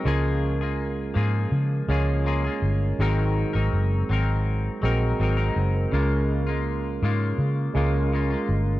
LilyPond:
<<
  \new Staff \with { instrumentName = "Tine electric piano" } { \time 4/4 \key des \major \tempo 4 = 82 << { r1 | r2. ees''8 c''16 bes'16~ | bes'16 r2. r8. | } \\ { <aes des' f' bes'>2 r8 <aes des' f' des''>4. | <aes c' ges' bes'>2 r8 <aes c' ges' bes'>4. | <aes des' f' bes'>2 r8 <aes des' f' bes'>4. | } >> }
  \new Staff \with { instrumentName = "Clean electric guitar" } { \time 4/4 \key des \major <des f bes f' aes'>8. <bes f' aes'>8. <f bes f' aes'>4 <f bes f' aes'>8 <f bes f' aes'>16 <bes f' aes'>8. | <aes, ees ges c' ees' bes'>8. <ges c' ees' bes'>8. <ges c' ees' bes'>4 <ges c' ees' bes'>8 <ges c' ees' bes'>16 <ges c' ees' bes'>8. | <des aes bes f'>8. <aes bes f'>8. <des aes bes f'>4 <des aes bes f'>8 <des aes bes f'>16 <aes bes f'>8. | }
  \new Staff \with { instrumentName = "Fingered electric bass" } { \clef bass \time 4/4 \key des \major des,4. aes,8 des8 des,4 g,,8 | aes,,8. aes,,16 ges,,8 aes,,4 bes,,8 aes,,8 ges,,8 | des,4. aes,8 des8 des,4 g,,8 | }
>>